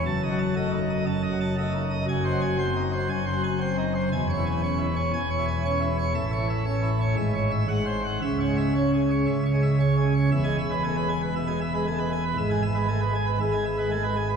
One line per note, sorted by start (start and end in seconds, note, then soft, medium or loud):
0.06 1.04 F#1 medium
0.06 1.04 F#2 medium
0.06 0.21 A5 medium
0.23 0.38 D#5 medium
0.31 0.54 F#3 medium
0.39 0.54 A5 medium
0.56 0.79 A3 medium
0.56 0.71 D#5 medium
0.73 0.88 D#4 medium
0.90 1.05 D#5 medium
1.06 2.05 F#1 medium
1.06 2.05 F#2 medium
1.06 1.22 A5 medium
1.23 1.38 D#5 medium
1.32 1.55 F#3 medium
1.41 1.56 A5 medium
1.58 1.80 A3 medium
1.58 1.73 D#5 medium
1.75 1.90 D#4 medium
1.91 2.05 D#5 medium
2.08 3.07 F#1 medium
2.08 3.07 F#2 medium
2.08 2.24 G#5 loud
2.25 2.40 C5 medium
2.32 2.56 F#3 medium
2.41 2.57 G#5 medium
2.58 2.81 C4 medium
2.58 2.74 C5 medium
2.76 2.91 D#4 medium
2.93 3.08 C5 medium
3.09 4.08 F#1 medium
3.09 4.08 F#2 medium
3.09 3.25 G#5 medium
3.26 3.42 C5 medium
3.35 3.58 F#3 medium
3.44 3.59 G#5 medium
3.61 3.83 C4 medium
3.61 3.76 C5 medium
3.78 3.93 D#4 medium
3.95 4.09 C5 medium
4.12 5.11 E1 medium
4.12 5.11 E2 medium
4.12 4.27 G#5 loud
4.29 4.44 C#5 medium
4.38 4.60 E3 medium
4.46 4.61 G#5 medium
4.63 4.86 C#4 medium
4.63 4.78 C#5 medium
4.79 4.94 E4 medium
4.96 5.11 C#5 medium
5.13 6.12 E1 medium
5.13 6.12 E2 medium
5.13 5.29 G#5 medium
5.30 5.45 C#5 medium
5.38 5.62 E3 medium
5.48 5.63 G#5 medium
5.64 5.87 C#4 medium
5.64 5.80 C#5 medium
5.81 5.96 E4 medium
5.97 6.12 C#5 medium
6.14 7.15 A1 medium
6.14 7.15 A2 medium
6.14 6.30 E5 loud
6.32 6.47 C#5 medium
6.40 6.63 E3 medium
6.49 6.65 E5 medium
6.66 6.89 C#4 medium
6.66 6.82 C#5 medium
6.83 6.99 E4 medium
7.00 7.15 C#5 medium
7.17 7.66 G#1 medium
7.17 7.66 G#2 medium
7.17 7.33 E5 loud
7.34 7.50 C#5 medium
7.51 7.67 E5 medium
7.68 8.20 G#1 medium
7.68 8.20 G#2 medium
7.68 7.85 F#5 medium
7.86 8.02 C5 medium
8.04 8.19 F#5 medium
8.22 9.25 C#2 medium
8.22 9.25 C#3 medium
8.22 8.38 E5 medium
8.40 8.56 C#5 medium
8.48 8.72 G#3 medium
8.57 8.73 E5 medium
8.75 8.99 C#4 soft
8.75 8.91 C#5 medium
8.94 9.09 G#4 medium
9.10 9.26 C#5 medium
9.27 10.29 C#2 medium
9.27 10.29 C#3 medium
9.27 9.43 E5 medium
9.45 9.61 C#5 medium
9.54 9.77 G#3 soft
9.62 9.78 E5 medium
9.79 10.03 C#4 medium
9.79 9.95 C#5 medium
9.97 10.13 G#4 medium
10.14 10.29 C#5 medium
10.31 12.33 E1 medium
10.31 12.33 E2 medium
10.31 10.43 E5 medium
10.44 10.56 G#3 medium
10.44 10.56 G#5 medium
10.58 10.70 E5 medium
10.71 10.82 G#3 medium
10.71 10.83 B4 medium
10.84 10.95 A3 soft
10.84 10.95 G#5 medium
10.97 11.08 G#3 medium
10.97 11.08 B4 medium
11.09 11.21 G#5 medium
11.22 11.34 B4 medium
11.36 11.47 B2 medium
11.36 11.47 E5 medium
11.48 11.59 G#3 medium
11.48 11.59 G#5 medium
11.61 11.72 E5 medium
11.74 11.85 G#3 medium
11.74 11.85 B4 medium
11.87 11.98 A3 medium
11.87 11.98 G#5 medium
11.99 12.10 G#3 medium
11.99 12.10 B4 medium
12.12 12.24 G#5 medium
12.25 12.36 B4 medium
12.37 13.38 G#1 medium
12.37 13.38 G#2 medium
12.37 12.49 E5 medium
12.50 12.62 G#3 medium
12.50 12.62 G#5 medium
12.62 12.74 E5 medium
12.75 12.87 G#3 medium
12.75 12.87 B4 medium
12.88 12.99 A3 soft
12.88 13.00 G#5 medium
13.01 13.13 G#3 medium
13.01 13.13 B4 medium
13.15 13.26 G#5 medium
13.27 13.38 B4 medium
13.40 14.37 G#1 medium
13.40 14.37 G#2 medium
13.40 13.52 E5 medium
13.53 13.64 G#3 medium
13.53 13.64 G#5 medium
13.65 13.77 E5 medium
13.78 13.90 G#3 medium
13.78 13.90 B4 medium
13.91 14.02 A3 medium
13.91 14.03 G#5 medium
14.04 14.15 G#3 medium
14.04 14.15 B4 medium
14.16 14.28 G#5 medium
14.29 14.37 B4 medium